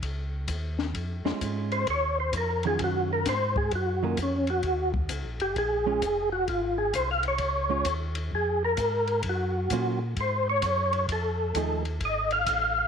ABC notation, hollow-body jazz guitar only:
X:1
M:4/4
L:1/8
Q:"Swing" 1/4=130
K:Bbm
V:1 name="Hollow-body jazz guitar"
z4 z [A,DF]3 | z3 [E,G,DF]3 z2 | z [E,G,DF] z6 | z [A,DF] z6 |
z [A,DF] z6 | z2 [G,B,DF] z4 z | z2 [F,=A,E^G] z4 z |]